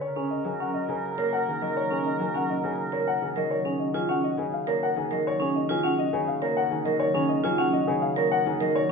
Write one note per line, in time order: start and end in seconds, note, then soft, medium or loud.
0.00 2.60 G#3 medium
0.00 3.33 A#4 medium
0.00 0.21 C#5 medium
0.16 0.35 C#4 medium
0.16 0.35 G#4 medium
0.31 0.50 D#5 medium
0.44 1.60 F#3 medium
0.44 0.64 G#4 medium
0.60 0.79 C#4 soft
0.60 0.79 F#5 medium
0.74 0.93 D#5 medium
0.88 2.62 C#3 medium
0.88 1.08 G#4 medium
1.18 2.92 A#3 medium
1.18 1.37 A#4 medium
1.18 1.37 C#5 medium
1.33 1.52 F#5 medium
1.47 3.21 D#3 medium
1.47 1.67 G#4 soft
1.62 2.18 F#3 medium
1.62 1.81 A#4 medium
1.62 1.81 D#5 medium
1.77 1.96 C#5 medium
1.91 2.10 C#4 medium
1.91 2.10 G#4 medium
2.06 2.25 D#5 medium
2.19 3.35 F#3 medium
2.19 2.39 G#4 medium
2.34 2.54 C#4 soft
2.34 2.54 F#5 medium
2.50 2.69 D#5 medium
2.64 4.36 C#3 medium
2.64 2.83 G#4 medium
2.92 4.66 A#3 medium
2.92 3.12 A#4 medium
2.92 3.12 C#5 medium
3.07 3.26 F#5 medium
3.22 4.95 D#3 medium
3.22 3.41 G#4 medium
3.36 3.93 F#3 medium
3.36 3.55 A#4 medium
3.36 3.56 D#5 medium
3.51 3.70 C#5 medium
3.65 3.85 C#4 medium
3.65 3.84 G#4 medium
3.79 3.99 D#5 medium
3.94 5.10 F#3 medium
3.94 4.14 F4 medium
3.94 4.14 G#4 medium
4.09 4.28 C#4 medium
4.09 4.28 F#5 medium
4.24 4.43 D#5 medium
4.37 6.12 C#3 medium
4.37 4.58 G#4 medium
4.53 4.72 F5 medium
4.67 6.42 A#3 medium
4.67 4.86 A#4 medium
4.67 4.87 C#5 medium
4.83 5.02 F#5 medium
4.96 6.70 D#3 medium
4.96 5.16 G#4 medium
5.11 5.68 F#3 medium
5.11 5.30 A#4 medium
5.11 5.31 D#5 medium
5.27 5.45 C#5 medium
5.40 5.59 C#4 medium
5.40 5.60 G#4 medium
5.56 5.74 D#5 medium
5.69 6.84 F#3 medium
5.69 5.89 F4 medium
5.69 5.89 G#4 medium
5.83 6.03 C#4 medium
5.83 6.03 F#5 medium
5.99 6.18 D#5 medium
6.13 7.87 C#3 medium
6.13 6.32 G#4 medium
6.28 6.47 F5 medium
6.42 8.16 A#3 medium
6.42 6.61 A#4 medium
6.42 6.61 C#5 medium
6.57 6.76 F#5 medium
6.71 7.14 D#3 medium
6.71 6.90 G#4 medium
6.85 7.43 F#3 medium
6.85 7.05 A#4 medium
6.85 7.05 D#5 medium
7.00 7.19 C#5 medium
7.14 8.45 D#3 medium
7.14 7.34 C#4 medium
7.14 7.34 G#4 medium
7.29 7.48 D#5 medium
7.44 8.59 F#3 loud
7.44 7.63 F4 medium
7.44 7.63 G#4 medium
7.58 7.78 C#4 medium
7.58 7.78 F#5 medium
7.73 7.92 D#5 medium
7.87 8.92 C#3 medium
7.87 8.07 G#4 medium
8.02 8.21 F5 medium
8.16 8.92 A#3 medium
8.16 8.36 A#4 medium
8.16 8.36 C#5 medium
8.31 8.51 F#5 medium
8.46 8.88 D#3 medium
8.46 8.65 G#4 medium
8.61 8.92 F#3 medium
8.61 8.80 A#4 medium
8.61 8.80 D#5 medium
8.75 8.92 C#5 medium